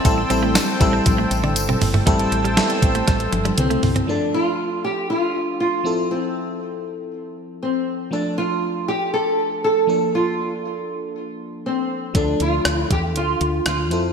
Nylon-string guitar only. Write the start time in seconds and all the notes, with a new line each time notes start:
Already playing: C4
3.59 C4
4.09 D4
4.34 F4
4.84 G4
5.10 F4
5.60 F4
6.11 C4
7.63 C4
8.13 D4
8.38 F4
8.88 G4
9.14 A4
9.64 A4
10.15 F4
11.66 C4
12.16 D4
12.42 F4
12.76 E4
12.92 G4
13.17 F4
13.68 F4